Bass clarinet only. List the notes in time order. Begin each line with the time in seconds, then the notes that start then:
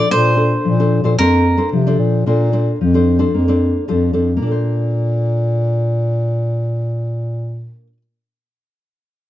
0.11 A#2
0.65 A#2
1.03 A#2
1.19 F2
1.72 C3
1.98 A#2
2.26 A#2
2.80 F2
3.33 F2
3.87 F2
4.13 F2
4.41 A#2